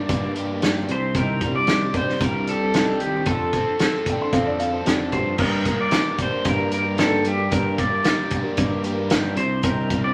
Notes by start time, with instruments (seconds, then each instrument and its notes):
Already playing: overdriven electric guitar G2 G3 D4 G4, pedal steel guitar D5
0.00 twelve-string acoustic guitar A#3
0.09 fingered electric bass G2, twelve-string acoustic guitar G3 A#3 D4, kick, closed hi-hat
0.14 twelve-string acoustic guitar G4
0.24 twelve-string acoustic guitar G3 A#3 D4 G4
0.35 twelve-string acoustic guitar G3 A#3 D4 G4, closed hi-hat
0.51 twelve-string acoustic guitar G3 A#3 D4 G4
0.62 twelve-string acoustic guitar G2 D3 G3 A#3 D4, snare, closed hi-hat
0.66 twelve-string acoustic guitar G4
0.88 fingered electric bass C2, overdriven electric guitar C3, twelve-string acoustic guitar G3 C4, pedal steel guitar C5, closed hi-hat
0.92 twelve-string acoustic guitar D4 G4
1.14 twelve-string acoustic guitar C3 D#3 G3 C4 D4 G4, pedal steel guitar A#4, kick, closed hi-hat
1.41 twelve-string acoustic guitar G3 C4, kick, closed hi-hat
1.46 twelve-string acoustic guitar D4 G4
1.56 twelve-string acoustic guitar G3 C4 D4 G4, pedal steel guitar D5
1.67 twelve-string acoustic guitar C3 D#3 G3, snare, closed hi-hat
1.71 twelve-string acoustic guitar C4 D4 G4
1.94 overdriven electric guitar D4, pedal steel guitar C5, kick, closed hi-hat
2.08 twelve-string acoustic guitar G3 C4 D4 G4, snare
2.20 fingered electric bass C2, twelve-string acoustic guitar G3 C4 D4, pedal steel guitar A#4, kick, closed hi-hat
2.24 twelve-string acoustic guitar G4
2.34 twelve-string acoustic guitar G3 C4 D4 G4
2.47 twelve-string acoustic guitar G3 C4 D4 G4, pedal steel guitar A4, closed hi-hat
2.60 twelve-string acoustic guitar G3 C4 D4 G4
2.73 twelve-string acoustic guitar C3 D#3 G3 C4 D4 G4, snare, closed hi-hat
3.00 overdriven electric guitar D#3, twelve-string acoustic guitar G3 C4 D4, pedal steel guitar G4, closed hi-hat
3.04 twelve-string acoustic guitar G4
3.15 twelve-string acoustic guitar G3 C4 D4 G4
3.25 fingered electric bass F2, twelve-string acoustic guitar F3 A3 C4, pedal steel guitar A4, kick, closed hi-hat
3.30 twelve-string acoustic guitar D4 A4
3.53 twelve-string acoustic guitar A3 C4 D4, kick, closed hi-hat
3.58 twelve-string acoustic guitar A4
3.67 twelve-string acoustic guitar C4 D4 A4
3.79 twelve-string acoustic guitar F3 A3 C4 D4 A4, snare, closed hi-hat
4.06 overdriven electric guitar D4, upright piano G5, kick, closed hi-hat
4.21 twelve-string acoustic guitar C4 D4 A4, upright piano C6
4.32 fingered electric bass F2, twelve-string acoustic guitar A3 C4 D4, upright piano F5, kick, closed hi-hat
4.36 twelve-string acoustic guitar A4
4.46 twelve-string acoustic guitar C4 D4 A4, upright piano D5
4.59 twelve-string acoustic guitar A3 C4 D4 A4, upright piano F5, closed hi-hat
4.72 twelve-string acoustic guitar C4 D4 A4, upright piano C5
4.85 fingered electric bass F2, twelve-string acoustic guitar F3 A3 C4 D4 A4, upright piano G4, snare, closed hi-hat
5.11 fingered electric bass G2, twelve-string acoustic guitar A3 C4 D4, upright piano F#4 G4, pedal steel guitar C5, kick, closed hi-hat
5.15 overdriven electric guitar F3, twelve-string acoustic guitar A4
5.38 twelve-string acoustic guitar G2 D3 G3 A#3 G4 A#4, fingered electric bass G2, pedal steel guitar A#4, kick, crash
5.65 twelve-string acoustic guitar G3 A#3 G4 A#4, kick, closed hi-hat
5.76 twelve-string acoustic guitar G3 A#3 G4 A#4
5.81 pedal steel guitar D5
5.89 twelve-string acoustic guitar G2 D3 G3 A#3 G4 A#4, snare, closed hi-hat
6.18 overdriven electric guitar D4, kick, closed hi-hat
6.22 pedal steel guitar C5
6.30 twelve-string acoustic guitar G3 A#3 G4 A#4
6.42 fingered electric bass G2, twelve-string acoustic guitar G3 A#3 G4 A#4, kick, closed hi-hat
6.49 pedal steel guitar A#4
6.58 twelve-string acoustic guitar G3 A#3 G4 A#4
6.69 twelve-string acoustic guitar G3 A#3 G4 A#4, closed hi-hat
6.74 pedal steel guitar A#4
6.83 twelve-string acoustic guitar G3 A#3 G4 A#4
6.95 twelve-string acoustic guitar G2 D3 G3 A#3 G4 A#4, overdriven electric guitar D4, snare, closed hi-hat
7.01 pedal steel guitar A4
7.23 twelve-string acoustic guitar G3 A#3 G4 A#4, closed hi-hat
7.27 pedal steel guitar G4
7.36 twelve-string acoustic guitar G3 A#3 G4 A#4
7.50 twelve-string acoustic guitar G2 D3 G3 A#3 G4 A#4, fingered electric bass G2, pedal steel guitar A#4, kick, closed hi-hat
7.75 twelve-string acoustic guitar G3 A#3 G4, kick, closed hi-hat
7.79 twelve-string acoustic guitar A#4, pedal steel guitar D5
7.90 twelve-string acoustic guitar G3 A#3 G4 A#4
8.02 twelve-string acoustic guitar G2 D3 G3 A#3 G4 A#4, snare, closed hi-hat
8.30 overdriven electric guitar D4, kick, closed hi-hat
8.43 twelve-string acoustic guitar G3 A#3 G4 A#4
8.55 fingered electric bass G2, twelve-string acoustic guitar G3 A#3 G4 A#4, kick, closed hi-hat
8.69 twelve-string acoustic guitar G3 A#3 G4 A#4
8.82 twelve-string acoustic guitar G3 A#3 G4 A#4, closed hi-hat
8.94 twelve-string acoustic guitar A#3 G4 A#4
8.98 twelve-string acoustic guitar G3
9.09 twelve-string acoustic guitar G2 D3 G3 A#3 G4 A#4, overdriven electric guitar D4, snare, closed hi-hat
9.35 fingered electric bass C2, overdriven electric guitar C3, twelve-string acoustic guitar G3 C4 D4 G4, pedal steel guitar C5, closed hi-hat
9.62 twelve-string acoustic guitar C3 D#3 G3 C4 D4 G4, pedal steel guitar A#4, kick, closed hi-hat
9.89 twelve-string acoustic guitar G3 C4 D4 G4, kick, closed hi-hat
10.04 twelve-string acoustic guitar G3 C4 D4 G4, pedal steel guitar D5